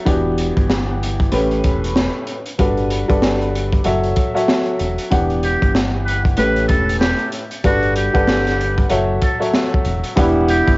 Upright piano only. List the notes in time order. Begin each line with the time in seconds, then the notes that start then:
0.05 E3 B3 D4 F#4 G4
1.32 A2 A3 C#4 G4 B4
2.59 G3 D4 F#4 A4 B4
3.08 G3 D4 F#4 A4 B4
3.84 F#3 F#4 A4 C#5 E5
4.34 F#3 F#4 A4 C#5 E5
5.11 E3 B3 D4 G4 F#5
6.37 A2 A3 C#4 G4 B4
7.64 G3 D4 F#4 A4 B4
8.13 G3 D4 A4 B4 F#5
8.89 F#3 F#4 A4 C#5 E5
9.39 F#3 F#4 A4 C#5 E5
10.16 E3 B3 D4 G4 F#5